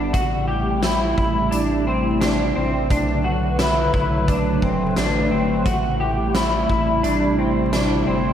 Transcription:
Already playing: G1 D3 G3 B3 D4 F#5
0.13 A1 C3 A3 E4 F#4, kick, closed hi-hat
0.48 G4
0.70 G5
0.83 E4, snare, closed hi-hat
1.17 A1 E4, kick
1.51 A1 D4, closed hi-hat
1.87 C4
2.21 D4, snare, closed hi-hat
2.55 A1 C4
2.90 B1 D3 F#3 D4 B4, kick, closed hi-hat
3.24 F#4
3.59 E4, snare, closed hi-hat
3.93 B1 E4, kick
4.28 D4, kick, closed hi-hat
4.62 F#1 C4, kick
4.96 A1 D4, snare, closed hi-hat
5.31 G1 C4
5.65 A1 C3 G3 E4 F#4, kick, closed hi-hat
6.00 G4
6.35 E4, snare, closed hi-hat
6.70 A1 E4, kick
7.03 A1 D4, closed hi-hat
7.38 C4
7.73 D4, snare, closed hi-hat
8.07 G1 C4

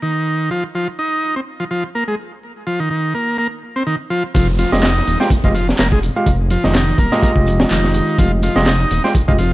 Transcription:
0.02 D#3
0.51 F3
0.75 F3
0.99 D#4
1.36 C4
1.60 F3
1.71 F3
1.95 A#3
2.08 G#3
2.67 F3
2.80 D#3
2.90 D#3
3.15 A#3
3.38 A#3
3.76 C4
3.87 D#3
4.10 F3
4.34 F1 F3, kick, closed hi-hat, downlifter, shaker
4.59 F3, closed hi-hat, shaker
4.72 F1 G#3 F4 G4 D#5, snare, shaker
4.83 D#4, snare, clap, closed hi-hat, shaker
5.07 D#1, closed hi-hat, shaker
5.20 G#3 C4 F4 G4 G5, snare, shaker
5.30 F1, kick, closed hi-hat, shaker
5.44 F1 F3 G#3 F4 G4 D#5, kick
5.54 F3, closed hi-hat, shaker
5.68 snare, shaker
5.79 F1 A#3, snare, clap, closed hi-hat, shaker
5.92 G#3, kick
6.03 closed hi-hat, shaker
6.16 G#3 F4 G4 F5, shaker
6.26 F1, kick, closed hi-hat, shaker
6.50 F3, closed hi-hat, shaker
6.64 F1 D#3 G#3 F4 G4 D#5, snare, shaker
6.75 D#3, snare, clap, closed hi-hat, shaker
6.98 D#1 A#3, kick, closed hi-hat, shaker
7.12 G#3 F4 G4 D#5, snare, shaker
7.23 A#3, kick, closed hi-hat, shaker
7.36 F1, kick
7.47 closed hi-hat, shaker
7.60 snare, shaker
7.70 F1 D#3, clap, closed hi-hat, shaker
7.84 snare
7.94 closed hi-hat, shaker
8.08 shaker
8.18 F1 F3, kick, closed hi-hat, shaker
8.43 F3, closed hi-hat, shaker
8.56 F1 G#3 F4 G4 D#5, snare, shaker
8.66 D#4, snare, clap, closed hi-hat, shaker
8.91 D#1, closed hi-hat, shaker
9.04 G#3 C4 F4 G4 G5, snare, shaker
9.15 F1, kick, closed hi-hat, shaker
9.28 F1 F3 G#3 F4 G4 D#5, kick
9.38 F3, closed hi-hat, shaker

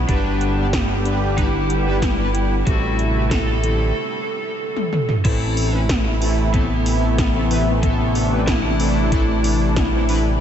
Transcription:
Already playing: B3
0.08 G1 G2 D3 G3 B3 D4 G4 B4, kick, closed hi-hat
0.41 closed hi-hat
0.57 G2 G3 B3 D4 G4 D5
0.73 kick, snare, closed hi-hat
1.05 G2 G3 B3 D4 G4 B4, closed hi-hat
1.37 G2 G3 B3 D4 E4 G4 B4, kick, closed hi-hat
1.70 closed hi-hat
1.86 G2 G3 B3 D4 G4 B4
2.02 kick, snare, closed hi-hat
2.18 G2 G3 B3 D4 G4 B4
2.35 closed hi-hat
2.66 A1 A2 C3 G3 A3 C4 E4 F#4 A4, kick, closed hi-hat
2.99 closed hi-hat
3.15 A2 A3 C4 E4 G4 B4
3.31 A4, kick, snare, closed hi-hat
3.63 D3 A3 C4 E4 G4 A4, closed hi-hat
4.76 high tom
4.93 mid tom
5.09 mid tom
5.24 A1 A2 C3 E3 A3 C4 E4 A4, kick, closed hi-hat, crash
5.57 open hi-hat
5.73 A2 E3 A3 C4 E4 B4
5.89 kick, snare, closed hi-hat
6.21 A2 E3 A3 C4 E4 A4, open hi-hat
6.54 A2 E3 A3 B3 C4 E4 A4, kick, closed hi-hat
6.86 open hi-hat
7.18 kick, snare, closed hi-hat
7.34 A2 E3 A3 C4 E4 A4
7.50 A2 E3 A3 C4 E4 B4, open hi-hat
7.83 A2 E3 A3 B3 D4 E4 A4, kick, closed hi-hat
8.15 open hi-hat
8.31 A2 E3 A3 C4 E4 B4
8.47 E4, kick, snare, closed hi-hat
8.79 A2 E3 A3 C4 E4 A4, open hi-hat
9.12 A2 E3 A3 C4 E4 A4, kick, closed hi-hat
9.44 open hi-hat
9.76 kick, snare, closed hi-hat
9.92 A2 E3 A3 C4 E4 A4
10.09 E3 A3 C4 E4 B4, open hi-hat

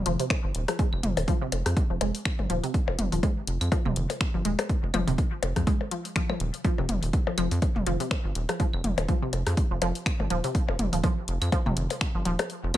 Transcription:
0.06 F1 F3, closed hi-hat
0.20 C3, closed hi-hat
0.30 finger snap, kick, closed hi-hat, percussion blips
0.44 G1
0.55 D#1, closed hi-hat
0.68 F3, cross-stick, closed hi-hat, percussion blips
0.79 G#3, kick, closed hi-hat
0.93 F1, claves
1.03 F1, closed hi-hat, mid tom
1.17 D#1, closed hi-hat, percussion blips
1.28 F3, kick, closed hi-hat
1.41 C3
1.52 F1, closed hi-hat, percussion blips
1.66 F2, cross-stick, closed hi-hat
1.77 kick, closed hi-hat
1.90 F1 F3
2.01 F1 G#3, closed hi-hat, percussion blips
2.15 closed hi-hat
2.25 finger snap, kick, closed hi-hat, claves
2.39 G1, mid tom, percussion blips
2.50 D#1 F3, closed hi-hat
2.63 C3, closed hi-hat
2.74 kick, closed hi-hat
2.88 F1, percussion blips
2.99 F1, closed hi-hat, mid tom
3.12 D#1 F3, closed hi-hat
3.23 G#3, kick, closed hi-hat, percussion blips
3.47 F1, closed hi-hat
3.61 F2, closed hi-hat, claves
3.72 F3, kick, closed hi-hat, percussion blips
3.85 F1 C3, mid tom
3.96 F1, closed hi-hat
4.10 closed hi-hat, percussion blips
4.21 finger snap, kick, closed hi-hat
4.34 G1 F3
4.45 D#1 G#3, closed hi-hat
4.59 cross-stick, closed hi-hat, percussion blips
4.69 kick, closed hi-hat
4.83 F1
4.94 F1 F3, closed hi-hat, mid tom, percussion blips, claves
5.07 D#1 C3, closed hi-hat
5.18 kick, closed hi-hat
5.43 F1, closed hi-hat, percussion blips
5.56 F2 F3, kick, cross-stick, closed hi-hat
5.67 G#3, kick, closed hi-hat
5.81 percussion blips
5.91 F3, closed hi-hat
6.05 closed hi-hat
6.16 F3, finger snap, kick, closed hi-hat
6.29 F3, mid tom, percussion blips, claves
6.40 D#1, closed hi-hat
6.54 closed hi-hat
6.64 F3, kick, closed hi-hat
6.78 F1 C3, percussion blips
6.89 F1, closed hi-hat, mid tom
7.03 D#1, closed hi-hat
7.13 kick, closed hi-hat
7.27 F3, percussion blips
7.38 F1 F3, closed hi-hat, claves
7.51 F2, closed hi-hat
7.62 kick, closed hi-hat, percussion blips
7.76 F1, mid tom
7.86 F1 F3, closed hi-hat
8.00 C3, closed hi-hat
8.11 finger snap, kick, closed hi-hat, percussion blips
8.25 G1
8.35 D#1, closed hi-hat
8.49 F3, cross-stick, closed hi-hat, percussion blips
8.60 F3, kick, closed hi-hat
8.73 F1, claves
8.84 F1, closed hi-hat, mid tom
8.98 D#1, closed hi-hat, percussion blips
9.08 F3, kick, closed hi-hat
9.22 C3
9.33 F1, closed hi-hat, percussion blips
9.47 F2, cross-stick, closed hi-hat
9.57 kick, closed hi-hat
9.71 F1 F3
9.82 F1 F3, closed hi-hat, percussion blips
9.95 closed hi-hat
10.06 finger snap, kick, closed hi-hat, claves
10.20 G1, mid tom, percussion blips
10.30 D#1 F3, closed hi-hat
10.44 C3, closed hi-hat
10.55 kick, closed hi-hat
10.68 F1, percussion blips
10.79 F1, closed hi-hat, mid tom
10.93 D#1 F3, closed hi-hat
11.04 F3, kick, closed hi-hat, percussion blips
11.28 F1, closed hi-hat
11.41 F2, closed hi-hat, claves
11.52 F3, kick, closed hi-hat, percussion blips
11.66 F1 C3, mid tom
11.77 F1, closed hi-hat
11.90 closed hi-hat, percussion blips
12.01 finger snap, kick, closed hi-hat
12.15 G1 F3
12.25 D#1 F3, closed hi-hat
12.39 cross-stick, closed hi-hat, percussion blips
12.50 closed hi-hat
12.64 F1
12.74 closed hi-hat

